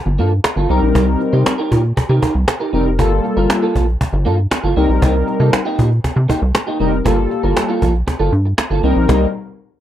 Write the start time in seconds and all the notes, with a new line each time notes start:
0.06 G1, muted clean electric guitar stroke
0.19 G2 A#3 F4 A4, cajon slap
0.32 muted clean electric guitar stroke
0.44 muted clean electric guitar stroke, cajon slap
0.56 G1 A#3 F4 A4
0.69 C2 G3 C4 D#4 G4 A#4, cajon slap
0.82 A#1, muted clean electric guitar stroke
0.95 C2 D#4 G4 A#4, cajon bass
1.07 muted clean electric guitar stroke
1.20 muted clean electric guitar stroke, cajon slap
1.33 C3 D#4 G4 C5
1.46 muted clean electric guitar stroke, cajon slap
1.58 D#4 G4 A#4
1.70 A#2 D#4 G4 A#4, cajon bass
1.84 muted clean electric guitar stroke, cajon slap
1.97 C3, muted clean electric guitar stroke, cajon bass, cajon slap
2.09 C3 D#4 G4 A#4
2.22 D#4 G4 A#4, cajon bass
2.35 C2
2.48 muted clean electric guitar stroke, cajon slap
2.60 D#4 G4 A#4
2.73 F1 G3 C4 D#4 G4 A#4
2.86 muted clean electric guitar stroke
2.98 G1 G3 A#3 F4 A4, cajon bass
3.11 muted clean electric guitar stroke
3.24 muted clean electric guitar stroke, cajon slap
3.37 G1 A#3 F4 A#4
3.50 muted clean electric guitar stroke, cajon slap
3.62 A#3 F4 A4
3.75 A#1 A#3 F4 A4, cajon bass
3.88 muted clean electric guitar stroke, cajon slap
4.01 cajon bass, cajon slap
4.13 G1, muted clean electric guitar stroke
4.25 G2 A#3 F4 A4, cajon slap
4.38 muted clean electric guitar stroke
4.51 muted clean electric guitar stroke, cajon slap
4.63 G1 A#3 F4 A4
4.76 C2 G3 A#3 C4 D#4 G4 A#4, cajon slap
4.89 A#1, muted clean electric guitar stroke
5.02 C2 A#3 D#4 G4, cajon bass
5.15 muted clean electric guitar stroke
5.28 muted clean electric guitar stroke, cajon slap
5.40 C3 A#3 D#4 A4
5.53 muted clean electric guitar stroke, cajon slap
5.65 A#3 D#4 G4
5.78 A#2 A#3 D#4 G4, cajon bass
5.91 muted clean electric guitar stroke, cajon slap
6.04 C3, cajon bass, cajon slap
6.16 C3, muted clean electric guitar stroke
6.29 A#3 D#4 G4, cajon bass
6.42 C2, muted clean electric guitar stroke
6.54 muted clean electric guitar stroke, cajon slap
6.67 A#3 D#4 G4
6.80 F1 G3 A#3 C4 D#4 G4 A#4, cajon slap
6.93 muted clean electric guitar stroke
7.05 G1 G3 A#3 F4 A4, cajon bass
7.18 muted clean electric guitar stroke
7.31 muted clean electric guitar stroke, cajon slap
7.43 G1 A#3 F4 A#4
7.56 muted clean electric guitar stroke, cajon slap
7.69 A#3 F4 A4
7.81 A#1 A#3 F4 A4, cajon bass
7.95 cajon slap
8.07 muted clean electric guitar stroke, cajon bass, cajon slap
8.20 G1 A#3 F4 A4
8.32 G2, muted clean electric guitar stroke, cajon slap
8.45 muted clean electric guitar stroke
8.58 muted clean electric guitar stroke, cajon slap
8.70 G1 A#3 F4 A4
8.83 C2 G3 A#3 C4 D#4 G4 A#4, cajon slap
8.96 A#1, muted clean electric guitar stroke
9.09 C2 G3 A#3 C4 D#4 G4 A#4, cajon bass, cajon slap